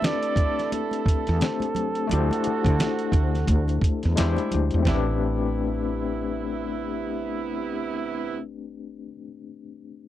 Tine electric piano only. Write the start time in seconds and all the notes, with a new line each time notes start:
Already playing: A3 C4 D4 G4 B4
1.40 A3 C4 D4 G4 C5
2.07 A3 D4 E4
2.13 G4 C5
4.16 G#3 D4 E4 G4
4.20 C5
4.79 A3 C4
4.87 D4 G4
4.94 B4